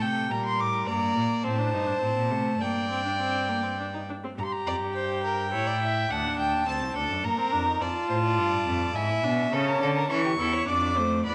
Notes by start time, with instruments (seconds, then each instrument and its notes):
Already playing: viola A3, violin A4
0.02 cello C3, violin G5
0.30 cello A#2, viola G3, violin A#4 A#5
0.45 violin C6
0.58 cello A2, violin D6
0.87 cello G2, viola A#3, violin D5 A#5
1.15 cello A#2
1.44 cello A2, viola C4, violin C5 A5
1.58 viola D4
1.72 cello G2, viola D#4
1.87 viola D4
2.01 cello A2, viola C4
2.16 cello A#2
2.30 cello C3, viola A3
2.60 cello G2, viola A#3, violin D5 G5
2.90 viola C4
3.04 viola D4
3.19 viola C4
3.49 viola A#3
3.63 viola C4
3.79 viola D4
3.94 viola D#4
4.09 viola D4
4.24 viola C4
4.38 cello G2, viola G4, violin A#5
4.45 violin C6
4.52 violin A#5
4.67 cello F2, violin D5
4.81 cello G2
4.95 violin C5 G5
5.23 violin A#4
5.53 cello A2, viola E4, violin C#5
5.67 violin D5
5.82 violin E5
6.10 cello D2, viola D4, violin F#5 A5
6.24 cello D#2
6.39 cello D2, violin G5
6.53 cello D#2
6.68 cello D2, viola C4, violin A5
6.82 cello C2
6.96 cello D2, viola D4, violin A4
7.10 cello F#2
7.24 cello G2, viola A#3, violin A#4 A#5
7.38 viola C4
7.52 cello F2, viola D4
7.66 viola D#4
7.80 cello F2, viola F4, violin D5 A5
8.09 cello A2, violin C5
8.24 violin D5
8.38 cello G2
8.66 cello F2
8.95 cello G#2, viola E4, violin E5 G#5
9.09 cello A2
9.24 cello B2, viola D4
9.52 cello C#3, viola C#4, violin A4 A5
9.68 violin A#4
9.81 cello D3, violin A4
9.96 violin A#4
10.09 cello E3, viola C#4, violin A4 C#6
10.25 violin G4
10.39 cello E2, viola E4, violin A4
10.53 violin C#5
10.68 cello F2, viola D4, violin D5 D6
10.97 viola A3, violin C5
11.25 cello E2, viola B3, violin D5 B5